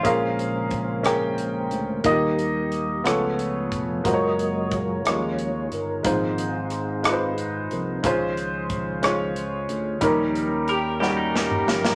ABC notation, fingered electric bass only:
X:1
M:6/8
L:1/8
Q:3/8=60
K:Ebmix
V:1 name="Fingered electric bass" clef=bass
B,,,4- B,,, =D,, | E,,3 D,,2 F,,, | _G,,,3 E,,2 =G,,, | A,,,4- A,,, C,, |
D,,4- D,, =D,, | E,,4- E,, G,,, |]